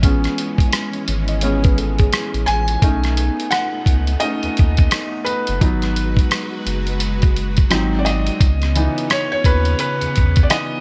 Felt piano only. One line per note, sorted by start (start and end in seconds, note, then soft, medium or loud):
0.02 1.41 G#3 medium
0.02 1.42 B3 soft
0.02 1.42 C#4 medium
1.43 1.74 G#3 soft
1.43 1.74 B3 soft
1.43 1.74 C#4 medium
2.46 3.55 G#5 loud
2.83 4.20 A3 medium
2.83 4.21 C#4 medium
2.83 4.21 D#4 medium
3.51 4.23 F#5 loud
4.20 4.53 A3 soft
4.20 4.53 C#4 soft
4.20 4.53 D#4 medium
4.20 5.29 D#5 medium
5.24 5.91 B4 medium
5.61 6.10 F#3 medium
5.61 6.10 B3 medium
5.61 6.11 D#4 medium
7.70 8.37 F#3 medium
7.70 8.37 C4 medium
7.70 8.37 D#4 medium
7.99 8.05 D5 medium
8.05 9.13 D#5 medium
8.75 9.24 E3 medium
8.75 9.25 B3 soft
8.75 9.25 D#4 medium
9.11 9.30 C#5 medium
9.32 9.44 C#5 medium
9.45 9.78 B4 medium
9.80 10.46 B4 medium
10.43 10.49 D5 medium
10.50 10.80 E3 soft
10.50 10.80 B3 soft
10.50 10.80 D#4 medium
10.50 10.80 D#5 loud